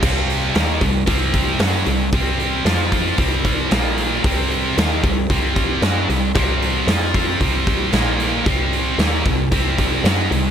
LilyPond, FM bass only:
\new Staff \with { instrumentName = "FM bass" } { \clef bass \time 4/4 \key f \major \tempo 4 = 114 c,4 ees,8 c,8 c,4 fis,8 c,8 | c,4 f,4 c,4 bes,,4 | c,4 ees,8 c,8 c,4 fis,8 c,8 | c,4 f,4 c,4 bes,,4 |
c,4 ees,8 c,8 c,4 fis,8 c,8 | }